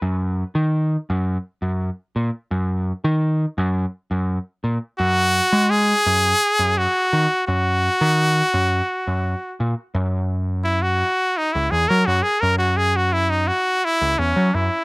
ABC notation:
X:1
M:7/8
L:1/16
Q:1/4=85
K:F#mix
V:1 name="Trumpet"
z12 z2 | z12 z2 | F4 G6 F4 | F12 z2 |
z4 E F3 D E G A F G | A F G F E D F2 E2 C2 E2 |]
V:2 name="Picked electric bass" clef=bass
F,,3 D,3 F,,2 z F,,2 z A,, z | F,,3 D,3 F,,2 z F,,2 z A,, z | F,,3 G,3 F,,2 z F,,2 z D, z | F,,3 D,3 F,,2 z F,,2 z A,, z |
F,,8 z C,, E,, F, F,, z | F,,8 z C,, E,, F, F,, z |]